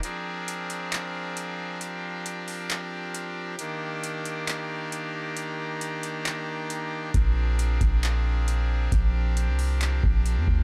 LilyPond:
<<
  \new Staff \with { instrumentName = "Pipe organ" } { \time 4/4 \key bes \mixolydian \tempo 4 = 135 << { <d' bes'>1~ | <d' bes'>1 | <d' bes'>1~ | <d' bes'>1~ |
<d' bes'>1~ | <d' bes'>1 | } \\ { aes'1 | g'1~ | g'1~ | g'1 |
aes'1 | g'1 | } >> }
  \new Staff \with { instrumentName = "Pipe organ" } { \clef bass \time 4/4 \key bes \mixolydian <f c'>1~ | <f c'>1 | <ees bes>1~ | <ees bes>1 |
<f c'>1~ | <f c'>1 | }
  \new Staff \with { instrumentName = "808-style bass" } { \clef bass \time 4/4 \key bes \mixolydian r1 | r1 | r1 | r1 |
bes,,4. bes,,2~ bes,,8 | bes,,4~ bes,,16 c,4~ c,16 bes,,8. f,16 d,8 | }
  \new DrumStaff \with { instrumentName = "Drums" } \drummode { \time 4/4 hh4 hh8 hh8 <hc hh>4 hh4 | hh4 hh8 hho8 <hc hh>4 hh4 | hh4 hh8 hh8 <hc hh>4 hh4 | hh4 hh8 hh8 <hc hh>4 hh4 |
<hh bd>4 hh8 <hh bd>8 <hc hh>4 hh4 | <hh bd>4 hh8 hho8 <hc hh>8 bd8 hh8 bd8 | }
>>